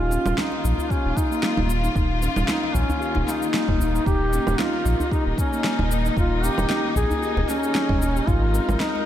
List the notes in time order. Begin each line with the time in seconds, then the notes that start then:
Already playing: D#1 D#3 A#3 F4
0.11 C#4, djembe slap, djembe tone, cabasa
0.26 D#1, low conga, cabasa
0.38 D#4, snare, djembe slap, cabasa
0.52 djembe slap
0.64 A#1 F4, djembe tone, cabasa
0.78 djembe bass, cabasa
0.90 C#4 G4, kick, cabasa
1.05 D#1 D#4
1.17 D#4, kick, djembe slap, cabasa
1.31 A#3, cabasa
1.43 snare, cabasa
1.57 D#1 A#3, djembe bass, low conga
1.70 cabasa
1.83 D#4, djembe slap, cabasa
1.95 D#1 D#4, kick, cabasa
2.21 C#4, djembe slap, djembe tone, cabasa
2.36 D#1, low conga, cabasa
2.48 D#4, snare, djembe slap, cabasa
2.63 djembe slap
2.74 A#1 C#4, kick, djembe tone, cabasa
2.90 djembe bass, cabasa
3.01 G4, cabasa
3.15 D#1 D#4, djembe slap, djembe bass
3.27 D#4, snare, cabasa
3.42 A#3, cabasa
3.54 snare, cabasa
3.68 D#1, kick, low conga
3.80 djembe bass, cabasa
3.94 D#4, djembe tone, cabasa
4.06 D#1 D#4 G4, kick, cabasa
4.33 C#4, djembe slap, djembe tone, cabasa
4.47 D#1, low conga, cabasa
4.59 D#4 F4, snare, djembe slap, cabasa
4.73 djembe slap
4.85 A#1 F4, djembe tone, cabasa
5.00 djembe bass, cabasa
5.11 D#4 G4, kick, cabasa
5.26 D#1 D#4
5.38 C#4, kick, djembe slap, cabasa
5.53 A#3, cabasa
5.64 snare, cabasa
5.79 D#1, low conga, djembe bass
5.91 cabasa
6.05 D#4, djembe slap, cabasa
6.17 D#1 F4, kick, cabasa
6.43 C#4 G4, djembe slap, djembe tone, cabasa
6.58 D#1, low conga, cabasa
6.69 D#4, snare, djembe slap, cabasa
6.84 djembe slap
6.96 A#1 G#4, kick, djembe tone, cabasa
7.11 djembe bass, cabasa
7.23 G4, cabasa
7.37 D#1 D#4, djembe slap, djembe bass
7.48 C#4, snare, cabasa
7.63 G#4, cabasa
7.75 snare, cabasa
7.89 D#1 D#5, kick, low conga
8.02 djembe bass, cabasa
8.16 G4, djembe tone, cabasa
8.27 G#1 G#3 D#4 F4 A#4, kick, cabasa
8.54 C4, djembe slap, djembe tone, cabasa
8.68 G#1, low conga, cabasa
8.80 D#4 D#5, snare, djembe slap, cabasa
8.96 djembe slap